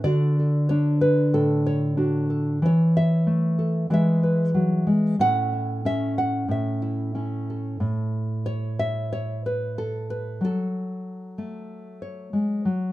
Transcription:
0.04 2.62 D3 medium
0.04 0.69 D4 soft
0.04 1.97 F#4 soft
0.04 0.38 A4 soft
0.04 1.33 D5 loud
0.39 0.69 A4 soft
0.69 1.96 D4 medium
0.69 1.01 C#5 medium
1.01 1.66 B4 medium
1.34 2.62 A2 medium
1.34 2.29 A4 medium
1.66 2.29 C#5 medium
1.97 2.58 D4 medium
1.97 2.58 F#4 soft
2.30 2.58 A4 soft
2.62 3.90 E3 medium
2.62 3.58 C#5 medium
2.97 3.92 E5 loud
3.27 3.87 A3 medium
3.59 3.87 A4 soft
3.90 5.19 E3 medium
3.90 4.54 G#3 soft
3.90 5.15 G#4 medium
3.90 4.22 B4 soft
3.90 5.20 E5 medium
4.23 5.15 B4 soft
4.54 4.87 F#3 medium
4.87 5.19 G#3 medium
5.19 6.47 A2 medium
5.19 5.84 C#4 soft
5.19 5.51 E4 soft
5.19 5.85 F#5 loud
5.53 6.81 E4 soft
5.85 7.14 C#4 medium
5.85 6.18 E5 loud
6.18 6.50 F#5 medium
6.48 7.79 A2 medium
6.48 7.50 E5 medium
6.82 7.14 E4 soft
7.15 7.77 C#4 medium
7.15 8.45 E4 soft
7.50 8.79 A4 soft
7.80 10.40 A2 medium
8.46 9.11 C#5 medium
8.79 9.76 E5 loud
9.12 9.44 C#5 medium
9.46 10.09 B4 medium
9.78 10.41 A4 medium
10.10 10.41 B4 medium
10.41 12.64 F#3 medium
10.41 12.01 A4 medium
11.38 12.33 A3 soft
12.02 12.92 C#5 soft
12.33 12.65 G#3 medium
12.65 12.92 F#3 medium

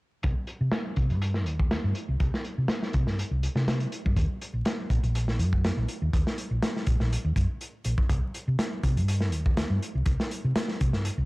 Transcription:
0.23 0.32 C2 medium
0.23 kick loud
0.23 closed hi-hat medium
0.47 closed hi-hat medium
0.61 0.68 C3 medium
0.72 snare loud
0.72 closed hi-hat medium
0.96 1.12 C3 medium
0.96 kick medium
0.96 closed hi-hat medium
1.10 1.46 G2 medium
1.10 closed hi-hat soft
1.22 closed hi-hat medium
1.34 snare soft
1.46 1.77 D#2 medium
1.46 closed hi-hat medium
1.59 kick medium
1.71 snare loud
1.71 closed hi-hat medium
1.84 1.91 G2 medium
1.95 closed hi-hat medium
2.09 2.16 C2 medium
2.20 2.29 C2 medium
2.20 kick loud
2.20 closed hi-hat medium
2.34 snare soft
2.44 closed hi-hat medium
2.58 2.65 C3 medium
2.68 snare loud
2.68 closed hi-hat medium
2.83 snare soft
2.93 3.07 C3 medium
2.93 kick medium
2.93 closed hi-hat medium
3.07 3.22 G2 medium
3.07 snare soft
3.19 closed hi-hat medium
3.31 3.46 C2 medium
3.43 closed hi-hat medium
3.55 3.85 C3 medium
3.55 snare soft
3.68 snare loud
3.68 closed hi-hat medium
3.80 closed hi-hat soft
3.92 closed hi-hat medium
4.05 4.13 G2 medium
4.05 kick medium
4.16 4.25 D#2 medium
4.16 kick loud
4.16 closed hi-hat medium
4.41 closed hi-hat medium
4.53 4.61 A#1 medium
4.65 snare loud
4.65 closed hi-hat medium
4.90 4.99 A#1 medium
4.90 kick medium
4.90 closed hi-hat medium
5.03 5.41 A#1 medium
5.03 closed hi-hat soft
5.15 closed hi-hat medium
5.28 snare soft
5.39 5.70 F#2 medium
5.39 closed hi-hat medium
5.53 kick medium
5.64 snare loud
5.64 closed hi-hat medium
5.77 5.85 A#1 medium
5.88 closed hi-hat medium
6.02 6.09 D#2 medium
6.13 6.22 D#2 medium
6.13 kick loud
6.13 closed hi-hat medium
6.27 snare medium
6.38 closed hi-hat medium
6.51 6.58 A#1 medium
6.62 snare loud
6.62 closed hi-hat medium
6.76 snare soft
6.86 6.96 A#1 medium
6.86 kick medium
6.86 closed hi-hat medium
7.00 7.15 A#1 medium
7.00 snare soft
7.13 closed hi-hat medium
7.25 7.35 D#2 medium
7.36 7.45 F#2 medium
7.36 kick medium
7.36 closed hi-hat medium
7.61 closed hi-hat medium
7.84 7.94 A#1 medium
7.84 closed hi-hat medium
7.98 kick medium
8.09 8.18 C2 medium
8.09 kick loud
8.09 closed hi-hat medium
8.34 closed hi-hat medium
8.48 8.55 C3 medium
8.59 snare loud
8.59 closed hi-hat medium
8.83 8.98 C3 medium
8.83 kick medium
8.83 closed hi-hat medium
8.96 9.32 G2 medium
8.96 closed hi-hat soft
9.08 closed hi-hat medium
9.21 snare soft
9.32 9.63 D#2 medium
9.32 closed hi-hat medium
9.46 kick medium
9.57 snare loud
9.57 closed hi-hat medium
9.70 9.78 G2 medium
9.82 closed hi-hat medium
9.95 10.03 C2 medium
10.06 10.15 C2 medium
10.06 kick loud
10.06 closed hi-hat medium
10.20 snare medium
10.31 closed hi-hat medium
10.44 10.52 C3 medium
10.56 snare loud
10.56 closed hi-hat medium
10.68 snare soft
10.81 10.94 C3 medium
10.81 kick medium
10.81 closed hi-hat medium
10.93 11.09 G2 medium
10.93 snare soft
11.05 closed hi-hat medium
11.18 11.25 C2 medium

